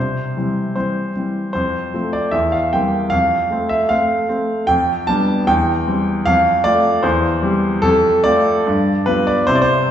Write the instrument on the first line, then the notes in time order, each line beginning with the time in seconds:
grand piano
Already playing: C3 C5
0.37 E3 G3 C4
0.76 E3 G3 C4 C5
1.17 E3 G3 C4
1.53 F2 C5
1.94 F3 A3 C4
2.13 D5
2.31 E2 E5
2.52 F5
2.73 G3 A#3 C4 G5
3.10 F2 F5
3.50 A3 C4
3.69 E5
3.89 A3 C4 F5
4.29 A3 C4
4.67 F2 G5
5.07 G3 B3 D4 A5
5.47 E2 G5
5.87 G3 C4
6.26 F2 F5
6.64 A3 C4 F4 D5
7.03 E2 C5
7.42 G3 C4 G4
7.82 F2 A4
8.24 A3 C4 F4 D5
8.67 G2
9.06 G3 B3 F4 B4
9.27 D5
9.47 C3 C4 E4 C5
9.55 D5
9.62 C5